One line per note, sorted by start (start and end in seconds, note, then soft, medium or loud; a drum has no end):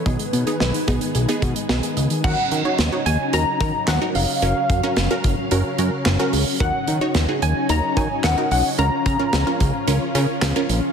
0.00 2.20 B3 medium
0.06 0.17 B1 loud
0.06 0.14 D#3 medium
0.06 2.22 D#3 medium
0.06 2.22 G#3 medium
0.06 0.37 B3 medium
0.06 0.37 D#4 medium
0.06 2.22 G#4 medium
0.06 0.37 G#4 medium
0.06 1.66 B4 loud
0.06 kick loud
0.06 closed hi-hat medium
0.19 0.27 G#3 medium
0.19 closed hi-hat medium
0.33 0.45 B2 loud
0.33 0.41 B3 medium
0.33 closed hi-hat medium
0.46 0.77 B3 medium
0.46 0.77 D#4 medium
0.46 0.54 G#4 medium
0.46 0.77 G#4 medium
0.46 closed hi-hat soft
0.60 0.72 B1 loud
0.60 0.68 D#5 medium
0.60 snare loud
0.74 0.82 D#3 medium
0.74 closed hi-hat medium
0.88 0.99 B1 loud
0.88 0.96 G#3 medium
0.88 1.18 B3 medium
0.88 1.18 D#4 medium
0.88 1.18 G#4 loud
0.88 kick loud
0.88 closed hi-hat medium
1.01 1.09 B3 medium
1.01 closed hi-hat medium
1.15 1.27 B1 loud
1.15 1.23 G#4 medium
1.15 closed hi-hat medium
1.28 1.59 B3 medium
1.28 1.59 D#4 medium
1.28 1.59 G#4 loud
1.28 1.36 D#5 medium
1.28 closed hi-hat medium
1.42 1.54 B2 loud
1.42 1.50 D#3 medium
1.42 kick medium
1.42 closed hi-hat medium
1.56 1.64 G#3 medium
1.56 closed hi-hat medium
1.69 1.81 B1 loud
1.69 1.77 B3 medium
1.69 2.10 B3 medium
1.69 2.10 D#4 medium
1.69 2.10 G#4 loud
1.69 snare loud
1.83 1.91 G#4 medium
1.83 closed hi-hat medium
1.97 2.08 C#2 medium
1.97 2.05 D#5 medium
1.97 closed hi-hat medium
2.10 2.18 D#3 medium
2.10 closed hi-hat medium
2.24 2.36 D#2 loud
2.24 10.93 C#3 medium
2.24 6.56 F#3 medium
2.24 10.93 C#4 medium
2.24 4.40 D#4 medium
2.24 2.55 D#4 medium
2.24 2.55 F#4 medium
2.24 2.55 A#4 medium
2.24 2.75 F#5 loud
2.24 kick loud
2.24 crash loud
2.51 2.63 D#3 medium
2.51 closed hi-hat medium
2.65 2.85 D#4 medium
2.65 2.85 F#4 medium
2.65 2.85 C#5 medium
2.78 2.90 D#2 loud
2.78 snare loud
2.78 closed hi-hat medium
2.92 3.23 D#4 medium
2.92 3.23 F#4 medium
2.92 3.23 C#5 medium
3.06 3.17 D#2 loud
3.06 3.34 G#5 loud
3.06 closed hi-hat medium
3.33 3.45 D#2 loud
3.33 3.54 D#4 medium
3.33 3.54 F#4 medium
3.33 3.54 A#4 medium
3.33 3.60 A#5 loud
3.33 closed hi-hat medium
3.61 3.72 D#3 loud
3.61 3.91 D#4 medium
3.61 3.91 F#4 medium
3.61 3.91 A#4 medium
3.61 3.89 A#5 loud
3.61 kick medium
3.61 closed hi-hat medium
3.88 3.99 D#2 loud
3.88 4.00 F#5 loud
3.88 snare loud
3.88 clap medium
3.88 closed hi-hat medium
4.01 4.32 D#4 medium
4.01 4.32 F#4 medium
4.01 4.32 A#4 medium
4.15 4.26 F1 medium
4.15 5.75 F5 loud
4.15 open hi-hat medium
4.42 4.54 F#1 loud
4.42 4.73 C#4 medium
4.42 4.73 F#4 medium
4.42 4.73 A#4 medium
4.42 6.58 F5 medium
4.42 closed hi-hat medium
4.70 4.81 F#2 loud
4.70 kick medium
4.70 closed hi-hat medium
4.83 5.04 C#4 medium
4.83 5.04 F#4 medium
4.83 5.04 A#4 loud
4.97 5.08 F#1 medium
4.97 snare loud
4.97 closed hi-hat medium
5.11 5.41 C#4 medium
5.11 5.41 F#4 medium
5.11 5.41 A#4 loud
5.24 5.36 F#1 loud
5.24 kick loud
5.24 closed hi-hat medium
5.51 5.63 F#1 loud
5.51 5.72 C#4 medium
5.51 5.72 F#4 medium
5.51 5.72 A#4 loud
5.51 closed hi-hat medium
5.78 5.90 F#2 loud
5.78 6.09 C#4 medium
5.78 6.09 F#4 medium
5.78 6.09 A#4 loud
5.78 closed hi-hat medium
6.06 6.17 F#1 loud
6.06 snare loud
6.06 clap loud
6.06 closed hi-hat medium
6.19 6.50 C#4 loud
6.19 6.50 F#4 medium
6.19 6.50 A#4 loud
6.33 6.45 C#2 medium
6.33 open hi-hat medium
6.60 6.72 D#2 loud
6.60 8.76 F#3 medium
6.60 6.91 D#4 medium
6.60 8.76 D#4 medium
6.60 6.91 F#4 medium
6.60 6.91 A#4 medium
6.60 7.11 F#5 loud
6.60 kick loud
6.88 6.99 D#3 loud
6.88 closed hi-hat medium
7.01 7.22 D#4 medium
7.01 7.22 F#4 medium
7.01 7.22 C#5 medium
7.15 7.27 D#2 loud
7.15 snare loud
7.15 closed hi-hat medium
7.28 7.59 D#4 medium
7.28 7.59 F#4 medium
7.28 7.59 G#4 medium
7.42 7.54 D#2 loud
7.42 7.68 G#5 loud
7.42 closed hi-hat medium
7.69 7.81 D#2 loud
7.69 7.90 D#4 medium
7.69 7.90 F#4 medium
7.69 7.90 A#4 medium
7.69 7.98 A#5 loud
7.69 closed hi-hat medium
7.97 8.08 D#3 loud
7.97 8.27 D#4 medium
7.97 8.27 F#4 medium
7.97 8.27 C#5 medium
7.97 8.25 G#5 loud
7.97 kick medium
7.97 closed hi-hat medium
8.24 8.36 D#2 loud
8.24 8.50 F#5 loud
8.24 snare loud
8.24 clap medium
8.24 closed hi-hat medium
8.38 8.68 D#4 medium
8.38 8.68 F#4 medium
8.38 8.68 A#4 medium
8.51 8.63 B1 medium
8.51 8.64 F#5 medium
8.51 open hi-hat medium
8.78 8.90 C#2 loud
8.78 10.93 F3 medium
8.78 9.09 C#4 medium
8.78 9.09 F4 medium
8.78 10.93 F4 medium
8.78 9.09 A#4 medium
8.78 9.05 A#5 loud
8.78 closed hi-hat medium
9.06 9.17 C#3 loud
9.06 10.11 A#5 loud
9.06 kick medium
9.06 closed hi-hat medium
9.19 9.40 C#4 medium
9.19 9.40 F4 medium
9.19 9.40 A#4 medium
9.33 9.45 C#2 medium
9.33 snare loud
9.33 closed hi-hat medium
9.47 9.77 C#4 medium
9.47 9.77 F4 medium
9.47 9.77 A#4 medium
9.60 9.72 C#2 loud
9.60 kick loud
9.60 closed hi-hat medium
9.88 9.99 C#2 loud
9.88 10.08 C#4 medium
9.88 10.08 F4 medium
9.88 10.08 A#4 loud
9.88 closed hi-hat medium
10.15 10.26 C#3 loud
10.15 10.46 C#4 medium
10.15 10.46 F4 medium
10.15 10.46 A#4 loud
10.15 closed hi-hat medium
10.42 10.54 C#2 loud
10.42 snare loud
10.42 clap medium
10.42 closed hi-hat medium
10.56 10.86 C#4 medium
10.56 10.87 F4 medium
10.56 10.86 A#4 loud
10.69 10.81 A#1 loud
10.69 closed hi-hat medium